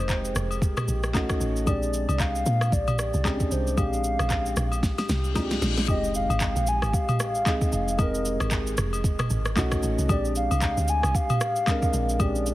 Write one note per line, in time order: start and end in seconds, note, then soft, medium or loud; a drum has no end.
0.00 0.34 F1 medium
0.00 1.16 G#3 medium
0.00 1.17 C4 medium
0.00 1.15 D#4 medium
0.00 0.42 G4 medium
0.00 1.16 G#4 medium
0.00 1.17 A#4 medium
0.00 0.62 C5 medium
0.09 kick medium
0.09 clap medium
0.09 low woodblock medium
0.09 shaker medium
0.25 shaker medium
0.35 0.75 F1 loud
0.35 cross-stick medium
0.35 shaker medium
0.51 high agogo medium
0.51 shaker medium
0.62 kick loud
0.62 shaker medium
0.77 cross-stick loud
0.77 mid tom medium
0.77 high agogo medium
0.77 shaker soft
0.88 1.38 A#1 medium
0.88 shaker loud
1.03 cross-stick medium
1.03 shaker soft
1.13 1.58 A3 medium
1.13 1.58 C#4 medium
1.13 1.59 D#4 medium
1.13 1.59 F#4 loud
1.13 kick medium
1.13 clap medium
1.13 high agogo medium
1.13 low woodblock medium
1.13 shaker medium
1.29 kick medium
1.29 cross-stick loud
1.29 shaker medium
1.40 1.66 A1 medium
1.40 shaker medium
1.56 shaker medium
1.65 2.07 A#1 loud
1.65 2.51 G#3 medium
1.65 2.52 C4 medium
1.65 2.52 D4 medium
1.65 2.53 G4 medium
1.65 2.22 D5 loud
1.65 kick loud
1.65 high agogo medium
1.65 shaker medium
1.83 shaker medium
1.94 shaker medium
2.09 2.44 C2 loud
2.09 high agogo medium
2.09 shaker medium
2.20 2.74 F5 loud
2.20 kick medium
2.20 clap medium
2.20 low woodblock medium
2.20 shaker medium
2.36 shaker medium
2.46 2.71 A#2 loud
2.46 shaker loud
2.61 cross-stick medium
2.61 high agogo medium
2.61 shaker medium
2.72 3.12 A#1 medium
2.72 2.98 D5 loud
2.72 kick loud
2.72 shaker medium
2.88 mid tom medium
2.88 high agogo medium
2.88 shaker soft
2.99 3.54 D5 loud
2.99 cross-stick loud
2.99 shaker loud
3.14 3.50 C2 medium
3.14 shaker soft
3.24 3.68 G#3 medium
3.24 3.69 C4 medium
3.24 3.33 C#4 medium
3.24 3.69 G4 medium
3.24 kick medium
3.24 clap medium
3.24 high agogo medium
3.24 low woodblock medium
3.24 shaker medium
3.32 3.72 D4 medium
3.40 kick loud
3.40 shaker medium
3.51 3.76 C2 medium
3.51 3.78 C5 medium
3.51 shaker medium
3.67 shaker medium
3.76 4.17 A#1 loud
3.76 4.62 G#3 medium
3.76 4.62 C4 medium
3.76 4.63 D4 medium
3.76 4.63 G4 medium
3.76 4.79 F5 loud
3.76 kick loud
3.76 high agogo medium
3.76 shaker medium
3.93 shaker medium
4.04 shaker medium
4.19 4.55 A#1 medium
4.19 cross-stick medium
4.19 high agogo medium
4.19 shaker medium
4.30 kick medium
4.30 clap medium
4.30 low woodblock medium
4.30 shaker medium
4.46 shaker medium
4.56 4.96 A#1 loud
4.56 cross-stick medium
4.56 shaker loud
4.72 high agogo medium
4.72 shaker medium
4.83 kick loud
4.83 snare medium
4.83 reverse cymbal medium
4.83 shaker medium
4.98 snare medium
4.98 high agogo medium
4.98 shaker soft
5.09 5.59 C2 loud
5.09 snare medium
5.09 shaker loud
5.24 shaker soft
5.34 5.79 G#3 medium
5.34 5.79 C4 medium
5.34 5.80 D4 medium
5.34 5.44 F4 medium
5.34 kick medium
5.34 snare medium
5.34 high agogo medium
5.34 low woodblock medium
5.34 shaker medium
5.43 5.83 G4 loud
5.51 snare medium
5.51 shaker medium
5.62 5.87 A#1 loud
5.62 snare loud
5.62 shaker medium
5.78 snare medium
5.78 shaker medium
5.87 6.28 F1 loud
5.87 6.73 G#3 medium
5.87 6.73 C4 medium
5.87 6.73 D#4 medium
5.87 6.74 G4 medium
5.87 6.13 D#5 loud
5.87 kick loud
5.87 impact medium
5.87 high agogo medium
5.87 shaker medium
6.04 shaker medium
6.15 6.70 F5 loud
6.15 shaker medium
6.30 6.55 G#1 loud
6.30 high agogo medium
6.30 shaker medium
6.40 kick medium
6.40 clap loud
6.40 low woodblock medium
6.40 shaker medium
6.56 6.81 A#1 medium
6.56 shaker medium
6.67 6.96 G#5 loud
6.67 shaker loud
6.82 6.93 G#1 medium
6.82 cross-stick medium
6.82 high agogo medium
6.82 shaker medium
6.93 8.01 F5 loud
6.93 kick loud
6.93 shaker medium
7.09 mid tom loud
7.09 high agogo medium
7.09 shaker soft
7.20 cross-stick loud
7.20 shaker loud
7.35 shaker soft
7.45 7.89 G#3 medium
7.45 7.90 C4 medium
7.45 7.90 D#4 medium
7.45 7.91 G#4 medium
7.45 kick medium
7.45 clap loud
7.45 high agogo medium
7.45 shaker medium
7.61 kick loud
7.61 shaker medium
7.73 7.98 F1 loud
7.73 shaker medium
7.88 shaker medium
7.98 8.38 F1 loud
7.98 8.83 G#3 medium
7.98 8.84 C4 medium
7.98 8.84 D#4 medium
7.98 8.85 A#4 medium
7.98 8.52 D#5 medium
7.98 kick loud
7.98 high agogo medium
7.98 shaker medium
8.15 shaker medium
8.25 shaker medium
8.40 8.76 G#1 medium
8.40 cross-stick loud
8.40 high agogo medium
8.40 shaker medium
8.51 kick medium
8.51 clap loud
8.51 low woodblock medium
8.51 shaker medium
8.67 shaker medium
8.77 9.28 F1 loud
8.77 cross-stick medium
8.77 shaker loud
8.93 high agogo medium
8.93 shaker medium
9.04 kick loud
9.04 shaker medium
9.19 cross-stick loud
9.19 mid tom medium
9.19 high agogo medium
9.19 shaker soft
9.30 9.55 G#1 loud
9.30 shaker loud
9.45 cross-stick medium
9.45 shaker soft
9.55 9.82 B1 loud
9.55 10.00 A3 medium
9.55 10.00 C#4 medium
9.55 10.01 D#4 medium
9.55 10.01 F#4 loud
9.55 kick medium
9.55 clap medium
9.55 high agogo medium
9.55 shaker medium
9.72 kick loud
9.72 cross-stick loud
9.72 shaker medium
9.83 9.98 A1 loud
9.83 shaker medium
9.98 10.09 C2 medium
9.98 shaker medium
10.08 10.49 A#1 loud
10.08 10.94 G#3 medium
10.08 10.94 C4 medium
10.08 10.95 D4 medium
10.08 10.95 G4 medium
10.08 10.34 D5 loud
10.08 kick loud
10.08 high agogo medium
10.08 shaker medium
10.25 shaker medium
10.36 10.91 F5 loud
10.36 shaker medium
10.51 10.76 C2 loud
10.51 high agogo medium
10.51 shaker medium
10.62 kick medium
10.62 clap medium
10.62 low woodblock medium
10.62 shaker medium
10.77 11.02 D2 medium
10.77 shaker medium
10.88 11.17 G#5 loud
10.88 shaker loud
11.03 11.14 C2 medium
11.03 cross-stick medium
11.03 high agogo medium
11.03 shaker medium
11.15 12.22 F5 loud
11.15 kick loud
11.15 shaker medium
11.30 mid tom medium
11.30 high agogo medium
11.30 shaker soft
11.41 cross-stick loud
11.41 shaker loud
11.56 shaker soft
11.66 12.10 G#3 medium
11.66 12.11 C4 medium
11.66 12.11 D4 medium
11.66 12.12 A#4 medium
11.66 kick medium
11.66 clap medium
11.66 high agogo medium
11.66 shaker medium
11.82 kick medium
11.82 shaker medium
11.93 12.19 A#1 medium
11.93 shaker medium
12.09 shaker medium
12.18 12.54 A#1 loud
12.18 12.54 G#3 medium
12.18 12.54 C4 medium
12.18 12.27 C#4 medium
12.18 12.54 G4 medium
12.18 12.54 D5 medium
12.18 kick loud
12.18 high agogo medium
12.18 shaker medium
12.27 12.54 D4 medium
12.36 shaker medium
12.46 shaker medium